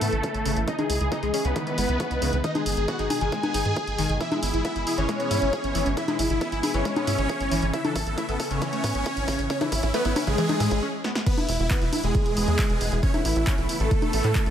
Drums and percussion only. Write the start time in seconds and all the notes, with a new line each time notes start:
0.01 open hi-hat
0.12 closed hi-hat
0.23 kick, closed hi-hat
0.34 closed hi-hat
0.46 open hi-hat
0.57 closed hi-hat
0.68 kick, closed hi-hat
0.79 closed hi-hat, high conga
0.90 open hi-hat
1.01 closed hi-hat
1.12 kick, closed hi-hat
1.23 closed hi-hat
1.34 open hi-hat
1.45 closed hi-hat
1.56 kick, closed hi-hat
1.67 closed hi-hat
1.78 open hi-hat
1.89 closed hi-hat
2.00 kick, closed hi-hat
2.11 closed hi-hat
2.22 open hi-hat
2.33 closed hi-hat
2.44 kick, closed hi-hat
2.55 closed hi-hat, high conga
2.66 open hi-hat
2.77 closed hi-hat
2.88 kick, closed hi-hat
2.99 closed hi-hat
3.10 open hi-hat, high conga
3.21 closed hi-hat
3.32 kick, closed hi-hat
3.43 closed hi-hat, high conga
3.54 open hi-hat
3.65 closed hi-hat
3.76 kick, closed hi-hat
3.87 closed hi-hat
3.98 open hi-hat
4.10 closed hi-hat
4.21 kick, closed hi-hat
4.32 closed hi-hat, high conga
4.43 open hi-hat
4.54 closed hi-hat
4.65 kick, closed hi-hat
4.76 closed hi-hat
4.87 open hi-hat
4.98 closed hi-hat
5.09 kick, closed hi-hat
5.20 closed hi-hat
5.31 open hi-hat
5.42 closed hi-hat
5.53 kick, closed hi-hat
5.64 closed hi-hat
5.75 open hi-hat
5.86 closed hi-hat
5.97 kick, closed hi-hat
6.08 closed hi-hat, high conga
6.19 open hi-hat
6.30 closed hi-hat
6.41 kick, closed hi-hat
6.52 closed hi-hat
6.63 open hi-hat, high conga
6.74 closed hi-hat
6.85 kick, closed hi-hat
6.96 closed hi-hat, high conga
7.07 open hi-hat
7.18 closed hi-hat
7.29 kick, closed hi-hat
7.41 closed hi-hat
7.51 open hi-hat
7.63 closed hi-hat
7.74 kick, closed hi-hat
7.85 closed hi-hat, high conga
7.96 kick, open hi-hat
8.07 closed hi-hat
8.18 kick, closed hi-hat
8.29 closed hi-hat
8.40 kick, open hi-hat
8.51 closed hi-hat
8.62 kick, closed hi-hat
8.73 closed hi-hat
8.84 kick, open hi-hat
8.95 closed hi-hat
9.06 kick, closed hi-hat
9.17 closed hi-hat
9.28 kick, open hi-hat
9.39 closed hi-hat
9.50 kick, closed hi-hat
9.61 kick, closed hi-hat, high conga
9.72 kick, open hi-hat
9.83 kick, closed hi-hat
9.94 kick, closed hi-hat
10.05 kick, closed hi-hat
10.16 kick, open hi-hat, high conga
10.27 kick, closed hi-hat
10.38 kick, closed hi-hat
10.49 kick, closed hi-hat, high conga
10.60 kick, open hi-hat
10.71 kick, closed hi-hat
11.04 snare
11.15 snare
11.26 kick, closed hi-hat, crash
11.38 closed hi-hat, high conga
11.49 open hi-hat
11.60 closed hi-hat
11.71 kick, clap, closed hi-hat
11.82 closed hi-hat
11.93 open hi-hat, high conga
12.04 closed hi-hat
12.15 kick, closed hi-hat
12.26 closed hi-hat
12.37 open hi-hat
12.48 closed hi-hat
12.59 kick, clap, open hi-hat
12.70 closed hi-hat
12.81 open hi-hat
12.92 closed hi-hat
13.03 kick, closed hi-hat
13.14 closed hi-hat, high conga
13.25 open hi-hat
13.36 closed hi-hat
13.47 kick, clap, closed hi-hat
13.58 closed hi-hat
13.69 open hi-hat
13.80 closed hi-hat
13.91 kick, closed hi-hat
14.02 closed hi-hat, high conga
14.13 open hi-hat
14.24 clap, closed hi-hat
14.35 kick, clap, closed hi-hat
14.46 closed hi-hat